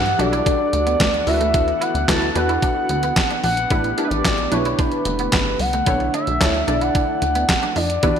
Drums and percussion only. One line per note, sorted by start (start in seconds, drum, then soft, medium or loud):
0.06 closed hi-hat soft
0.20 closed hi-hat medium
0.33 closed hi-hat soft
0.46 kick loud
0.46 closed hi-hat loud
0.73 closed hi-hat medium
0.87 closed hi-hat medium
1.00 kick loud
1.00 snare loud
1.00 clap medium
1.00 closed hi-hat medium
1.14 closed hi-hat soft
1.27 open hi-hat medium
1.41 closed hi-hat medium
1.54 kick loud
1.54 closed hi-hat loud
1.68 closed hi-hat soft
1.82 closed hi-hat medium
1.95 closed hi-hat medium
2.08 kick loud
2.08 snare loud
2.08 clap loud
2.08 closed hi-hat medium
2.22 closed hi-hat soft
2.35 closed hi-hat medium
2.49 closed hi-hat soft
2.62 kick loud
2.62 closed hi-hat medium
2.89 closed hi-hat medium
3.03 closed hi-hat medium
3.16 kick loud
3.16 snare loud
3.16 clap medium
3.16 closed hi-hat medium
3.31 closed hi-hat soft
3.44 open hi-hat medium
3.57 closed hi-hat medium
3.70 kick loud
3.70 closed hi-hat loud
3.84 closed hi-hat soft
3.98 closed hi-hat medium
4.11 closed hi-hat medium
4.25 kick loud
4.25 snare loud
4.25 clap medium
4.25 closed hi-hat loud
4.38 closed hi-hat soft
4.52 closed hi-hat medium
4.65 closed hi-hat soft
4.79 kick loud
4.79 closed hi-hat loud
4.92 closed hi-hat soft
5.05 closed hi-hat medium
5.19 closed hi-hat medium
5.32 kick loud
5.32 snare loud
5.32 clap loud
5.32 closed hi-hat medium
5.59 open hi-hat medium
5.73 closed hi-hat medium
5.86 kick loud
5.86 closed hi-hat loud
6.00 closed hi-hat soft
6.14 closed hi-hat medium
6.27 closed hi-hat soft
6.41 kick loud
6.41 snare loud
6.41 clap loud
6.41 closed hi-hat loud
6.54 closed hi-hat soft
6.68 closed hi-hat medium
6.81 closed hi-hat soft
6.95 kick loud
6.95 closed hi-hat medium
7.22 closed hi-hat medium
7.35 closed hi-hat medium
7.49 kick loud
7.49 snare loud
7.49 clap loud
7.49 closed hi-hat medium
7.63 closed hi-hat soft
7.76 open hi-hat medium
7.90 closed hi-hat medium
8.03 kick loud
8.03 closed hi-hat loud
8.16 closed hi-hat soft